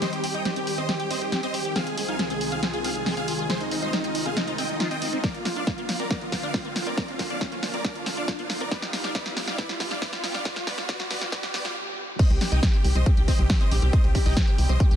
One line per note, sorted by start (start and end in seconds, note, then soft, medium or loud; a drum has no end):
0.00 1.72 D#3 medium
0.00 1.72 G3 medium
0.00 5.20 C4 medium
0.00 0.07 C4 medium
0.00 1.72 G4 medium
0.00 0.11 C5 medium
0.00 0.11 D#5 medium
0.00 snare soft
0.00 closed hi-hat medium
0.00 riser medium
0.13 0.22 G4 medium
0.13 closed hi-hat soft
0.24 0.27 C4 medium
0.24 0.33 G4 medium
0.24 open hi-hat loud
0.34 0.43 D#4 loud
0.34 0.44 D#5 medium
0.34 0.44 G5 medium
0.34 closed hi-hat soft
0.45 0.51 C4 medium
0.45 0.55 G4 medium
0.45 snare medium
0.45 closed hi-hat medium
0.56 0.59 C4 loud
0.56 0.66 G4 medium
0.56 closed hi-hat soft
0.67 0.77 G4 medium
0.67 open hi-hat loud
0.78 0.81 C4 medium
0.78 0.87 C5 medium
0.78 0.87 D#5 medium
0.78 closed hi-hat soft
0.89 0.94 C4 loud
0.89 0.98 G4 medium
0.89 snare medium
0.89 closed hi-hat medium
1.00 1.09 G4 medium
1.00 1.05 G4 medium
1.00 closed hi-hat soft
1.11 1.16 C4 medium
1.11 1.20 C5 medium
1.11 1.20 D#5 medium
1.11 open hi-hat loud
1.21 1.31 G4 medium
1.21 closed hi-hat soft
1.32 1.40 C4 loud
1.32 1.42 G4 medium
1.32 snare medium
1.32 closed hi-hat medium
1.43 1.46 C4 loud
1.43 1.53 C5 medium
1.43 1.53 D#5 medium
1.43 closed hi-hat soft
1.54 1.64 G4 medium
1.54 1.59 G4 medium
1.54 open hi-hat loud
1.65 1.74 G4 medium
1.65 1.70 G4 medium
1.65 closed hi-hat soft
1.76 5.20 C2 medium
1.76 5.20 D#3 medium
1.76 5.20 G#3 medium
1.76 1.81 C4 medium
1.76 8.67 F4 medium
1.76 1.85 G#4 medium
1.76 1.85 F5 medium
1.76 snare medium
1.76 closed hi-hat medium
1.87 1.96 G#4 medium
1.87 closed hi-hat soft
1.98 2.01 C4 medium
1.98 2.07 G#4 medium
1.98 open hi-hat loud
2.08 2.17 D#4 loud
2.08 2.18 F5 medium
2.08 2.18 G#5 medium
2.19 2.25 C4 medium
2.19 2.29 G#4 medium
2.19 snare medium
2.19 closed hi-hat medium
2.30 2.33 C4 loud
2.30 2.40 G#4 medium
2.30 closed hi-hat soft
2.41 2.50 G#4 medium
2.41 open hi-hat loud
2.52 2.55 C4 medium
2.52 2.61 G#4 medium
2.52 2.61 F5 medium
2.52 closed hi-hat soft
2.63 2.68 C4 loud
2.63 2.72 G#4 medium
2.63 snare medium
2.63 closed hi-hat medium
2.74 2.79 F4 medium
2.74 2.83 G#4 medium
2.74 closed hi-hat soft
2.84 2.90 C4 medium
2.84 2.94 G#4 medium
2.84 2.94 F5 medium
2.84 open hi-hat loud
2.95 3.05 G#4 medium
2.95 closed hi-hat soft
3.06 3.14 C4 loud
3.06 3.16 G#4 medium
3.06 snare medium
3.06 open hi-hat medium
3.17 3.20 C4 loud
3.17 3.27 G#4 medium
3.17 3.27 F5 loud
3.17 closed hi-hat soft
3.28 3.33 F4 medium
3.28 3.37 G#4 medium
3.28 open hi-hat loud
3.39 3.44 F4 medium
3.39 3.48 G#4 medium
3.39 closed hi-hat soft
3.50 3.55 C4 medium
3.50 3.59 G#4 medium
3.50 3.59 C5 loud
3.50 snare medium
3.50 closed hi-hat medium
3.61 3.70 D#4 medium
3.61 closed hi-hat soft
3.71 3.75 C4 medium
3.71 3.81 D#4 medium
3.71 open hi-hat loud
3.82 3.90 D#4 loud
3.82 3.92 C5 medium
3.82 3.92 D#5 medium
3.82 closed hi-hat soft
3.93 3.99 C4 medium
3.93 4.03 D#4 medium
3.93 snare medium
3.93 closed hi-hat medium
4.04 4.07 C4 loud
4.04 4.14 D#4 medium
4.04 closed hi-hat soft
4.15 4.24 D#4 medium
4.15 open hi-hat loud
4.26 4.29 C4 medium
4.26 4.35 G#4 medium
4.26 4.35 F5 medium
4.26 closed hi-hat soft
4.37 4.42 C4 loud
4.37 4.46 D#4 medium
4.37 snare medium
4.37 closed hi-hat medium
4.48 4.57 D#4 medium
4.48 4.53 F4 medium
4.48 closed hi-hat soft
4.58 4.64 C4 medium
4.58 4.68 D#5 medium
4.58 4.68 G5 medium
4.58 open hi-hat loud
4.69 4.79 D#4 medium
4.69 closed hi-hat soft
4.80 4.90 D#4 medium
4.80 4.88 F4 medium
4.80 snare medium
4.80 closed hi-hat medium
4.91 4.96 C4 medium
4.91 5.01 D#5 medium
4.91 5.01 G5 medium
4.91 closed hi-hat soft
5.02 5.07 C4 medium
5.02 5.11 D#4 medium
5.02 open hi-hat loud
5.13 5.18 C4 loud
5.13 5.22 D#4 medium
5.13 closed hi-hat soft
5.23 11.72 D3 medium
5.23 8.68 F3 medium
5.23 8.68 A#3 medium
5.23 5.29 A#3 medium
5.23 5.33 A#4 medium
5.23 5.33 D5 medium
5.23 kick loud
5.23 snare medium
5.23 closed hi-hat medium
5.34 5.44 F4 medium
5.34 closed hi-hat soft
5.45 5.49 C4 medium
5.45 5.55 F4 medium
5.45 snare medium
5.45 open hi-hat loud
5.56 5.64 D4 medium
5.56 5.66 D5 medium
5.56 5.66 F5 medium
5.56 closed hi-hat soft
5.67 5.73 A#3 medium
5.67 5.77 F4 medium
5.67 kick loud
5.67 snare medium
5.67 closed hi-hat medium
5.78 5.81 A#3 medium
5.78 5.87 F4 medium
5.78 closed hi-hat soft
5.89 5.98 F4 medium
5.89 snare medium
5.89 open hi-hat loud
6.00 6.03 C4 medium
6.00 6.09 A#4 medium
6.00 6.09 D5 medium
6.00 closed hi-hat soft
6.11 6.16 A#3 medium
6.11 6.20 A#4 medium
6.11 6.20 D5 medium
6.11 kick loud
6.11 snare medium
6.11 closed hi-hat medium
6.21 6.31 F4 medium
6.21 closed hi-hat soft
6.32 6.36 C4 medium
6.32 6.42 F4 medium
6.32 kick medium
6.32 snare medium
6.32 open hi-hat loud
6.43 6.51 D4 medium
6.43 6.53 D5 medium
6.43 6.53 F5 medium
6.43 closed hi-hat soft
6.54 6.59 A#3 medium
6.54 6.64 F4 medium
6.54 kick loud
6.54 snare medium
6.54 open hi-hat medium
6.65 6.68 A#3 loud
6.65 6.74 F4 medium
6.65 closed hi-hat soft
6.76 6.85 F4 medium
6.76 snare medium
6.76 open hi-hat loud
6.87 6.90 C4 medium
6.87 6.96 A#4 medium
6.87 6.96 D5 medium
6.87 closed hi-hat soft
6.97 7.03 A#3 medium
6.97 7.07 A#4 medium
6.97 7.07 D5 medium
6.97 kick loud
6.97 snare medium
6.97 closed hi-hat medium
7.08 7.18 F4 medium
7.08 closed hi-hat soft
7.19 7.23 C4 medium
7.19 7.29 F4 medium
7.19 kick medium
7.19 snare medium
7.19 open hi-hat loud
7.30 7.38 D4 loud
7.30 7.40 D5 medium
7.30 7.40 F5 medium
7.30 closed hi-hat soft
7.41 7.46 A#3 medium
7.41 7.51 F4 medium
7.41 kick loud
7.41 snare medium
7.41 closed hi-hat medium
7.52 7.55 A#3 medium
7.52 7.61 F4 medium
7.52 closed hi-hat soft
7.63 7.72 F4 medium
7.63 snare medium
7.63 open hi-hat loud
7.74 7.77 C4 medium
7.74 7.83 A#4 medium
7.74 7.83 D5 medium
7.74 closed hi-hat soft
7.84 7.90 A#3 medium
7.84 7.94 A#4 medium
7.84 7.94 D5 loud
7.84 kick loud
7.84 snare medium
7.84 closed hi-hat medium
7.95 8.05 F4 medium
7.95 closed hi-hat soft
8.06 8.09 C4 medium
8.06 8.16 F4 medium
8.06 snare medium
8.06 open hi-hat loud
8.17 8.25 D4 loud
8.17 8.27 D5 medium
8.17 8.27 F5 medium
8.17 closed hi-hat soft
8.28 8.33 A#3 medium
8.28 8.37 F4 medium
8.28 kick loud
8.28 snare medium
8.28 closed hi-hat medium
8.39 8.42 A#3 loud
8.39 8.48 F4 medium
8.39 closed hi-hat soft
8.50 8.59 F4 medium
8.50 snare medium
8.50 open hi-hat loud
8.61 8.64 C4 medium
8.61 8.70 A#4 medium
8.61 8.70 D5 medium
8.61 closed hi-hat soft
8.71 11.73 G3 medium
8.71 11.73 B3 medium
8.71 8.77 B3 medium
8.71 11.73 G4 medium
8.71 8.81 B4 medium
8.71 8.81 D5 loud
8.71 kick loud
8.71 snare medium
8.71 closed hi-hat medium
8.82 8.92 F4 medium
8.82 snare medium
8.82 closed hi-hat soft
8.93 8.96 B3 medium
8.93 9.03 F4 medium
8.93 snare medium
8.93 open hi-hat loud
9.04 9.12 D4 loud
9.04 9.13 D5 medium
9.04 9.13 F5 medium
9.04 snare medium
9.04 closed hi-hat soft
9.15 9.20 B3 medium
9.15 9.24 B4 medium
9.15 9.24 D5 loud
9.15 kick loud
9.15 snare loud
9.15 closed hi-hat medium
9.26 9.35 F4 medium
9.26 snare medium
9.26 closed hi-hat soft
9.37 9.40 B3 medium
9.37 9.46 F4 medium
9.37 snare medium
9.37 open hi-hat loud
9.48 9.56 D4 loud
9.48 9.57 D5 medium
9.48 9.57 F5 medium
9.48 snare medium
9.48 closed hi-hat soft
9.58 9.64 B3 medium
9.58 9.68 B4 medium
9.58 9.68 D5 loud
9.58 kick loud
9.58 snare medium
9.58 closed hi-hat medium
9.69 9.79 F4 medium
9.69 snare medium
9.69 closed hi-hat soft
9.80 9.83 B3 medium
9.80 9.90 F4 medium
9.80 kick medium
9.80 snare medium
9.80 open hi-hat loud
9.91 9.99 D4 loud
9.91 10.00 D5 medium
9.91 10.00 F5 medium
9.91 snare medium
9.91 closed hi-hat soft
10.02 10.07 B3 medium
10.02 10.11 B4 medium
10.02 10.11 D5 loud
10.02 kick loud
10.02 snare loud
10.02 open hi-hat medium
10.13 10.22 F4 medium
10.13 snare medium
10.13 closed hi-hat soft
10.24 10.27 B3 medium
10.24 10.33 F4 medium
10.24 snare loud
10.24 open hi-hat loud
10.34 10.43 D4 loud
10.34 10.44 D5 medium
10.34 10.44 F5 loud
10.34 snare medium
10.45 10.51 B3 medium
10.45 10.55 B4 medium
10.45 10.55 D5 loud
10.45 kick loud
10.45 snare loud
10.45 closed hi-hat medium
10.56 10.65 F4 medium
10.56 snare medium
10.56 closed hi-hat soft
10.67 10.73 B3 medium
10.67 10.77 B4 medium
10.67 10.77 D5 loud
10.67 kick medium
10.67 snare loud
10.67 open hi-hat loud
10.78 10.87 F4 medium
10.78 snare medium
10.78 closed hi-hat soft
10.89 10.94 B3 medium
10.89 10.98 B4 medium
10.89 10.98 D5 loud
10.89 kick loud
10.89 snare loud
10.89 closed hi-hat medium
11.00 11.09 F4 medium
11.00 snare medium
11.00 closed hi-hat soft
11.11 11.16 B3 medium
11.11 11.20 B4 medium
11.11 11.20 D5 loud
11.11 snare loud
11.11 open hi-hat loud
11.21 11.31 F4 medium
11.21 snare medium
11.21 closed hi-hat soft
11.32 11.38 B3 medium
11.32 11.42 B4 medium
11.32 11.42 D5 loud
11.32 kick loud
11.32 snare loud
11.32 closed hi-hat medium
11.43 11.52 F4 medium
11.43 snare loud
11.43 closed hi-hat soft
11.54 11.59 B3 medium
11.54 11.64 B4 medium
11.54 11.64 D5 loud
11.54 snare loud
11.54 open hi-hat loud
11.65 11.74 F4 medium
11.65 snare medium
11.65 closed hi-hat soft
12.19 12.25 C4 medium
12.19 12.29 C5 medium
12.19 12.29 D#5 loud
12.19 kick loud
12.19 closed hi-hat medium
12.19 crash loud
12.30 12.38 C2 medium
12.30 12.40 G4 medium
12.30 closed hi-hat soft
12.41 12.44 C4 medium
12.41 12.51 G4 medium
12.41 snare medium
12.41 open hi-hat loud
12.52 12.60 C2 medium
12.52 12.60 D#4 loud
12.52 12.61 D#5 medium
12.52 12.61 G5 medium
12.52 closed hi-hat soft
12.63 12.72 G4 medium
12.63 kick loud
12.63 snare loud
12.63 closed hi-hat medium
12.74 12.77 C4 loud
12.74 12.83 G4 medium
12.74 closed hi-hat soft
12.85 12.93 C2 medium
12.85 12.94 G4 medium
12.85 open hi-hat loud
12.95 13.04 C2 medium
12.95 12.99 C4 medium
12.95 13.05 C5 medium
12.95 13.05 D#5 medium
12.95 closed hi-hat soft
13.06 13.12 C4 loud
13.06 13.16 G4 medium
13.06 kick loud
13.06 closed hi-hat medium
13.17 13.25 C2 medium
13.17 13.22 G4 medium
13.17 13.27 G4 medium
13.17 closed hi-hat soft
13.28 13.33 C4 medium
13.28 13.38 C5 medium
13.28 13.38 D#5 medium
13.28 kick medium
13.28 open hi-hat loud
13.39 13.47 C2 medium
13.39 13.48 G4 medium
13.39 closed hi-hat soft
13.50 13.58 C4 loud
13.50 13.59 G4 medium
13.50 kick loud
13.50 snare loud
13.50 open hi-hat medium
13.61 13.64 C4 loud
13.61 13.70 C5 medium
13.61 13.70 D#5 loud
13.61 closed hi-hat soft
13.71 13.80 A#1 medium
13.71 13.81 G4 medium
13.71 13.77 G4 medium
13.71 open hi-hat loud
13.82 13.91 C2 medium
13.82 13.92 G4 medium
13.82 13.88 G4 medium
13.82 closed hi-hat soft
13.93 13.99 C4 medium
13.93 14.03 C5 medium
13.93 14.03 D#5 loud
13.93 kick loud
13.93 closed hi-hat medium
14.04 14.12 C2 medium
14.04 14.14 G4 medium
14.04 closed hi-hat soft
14.15 14.18 C4 medium
14.15 14.24 G4 medium
14.15 kick medium
14.15 open hi-hat loud
14.26 14.34 C2 medium
14.26 14.34 D#4 loud
14.26 14.35 D#5 medium
14.26 14.35 G5 medium
14.26 open hi-hat medium
14.37 14.42 C4 medium
14.37 14.46 G4 medium
14.37 kick loud
14.37 snare loud
14.37 closed hi-hat medium
14.48 14.51 C4 loud
14.48 14.57 G4 medium
14.48 closed hi-hat soft
14.58 14.67 C2 medium
14.58 14.68 G4 medium
14.58 open hi-hat loud
14.69 14.77 C2 medium
14.69 14.73 C4 medium
14.69 14.79 C5 medium
14.69 14.79 D#5 medium
14.69 closed hi-hat soft
14.80 14.86 C4 loud
14.80 14.90 G4 medium
14.80 kick loud
14.80 closed hi-hat medium
14.91 14.96 C2 medium
14.91 14.96 G4 medium
14.91 closed hi-hat soft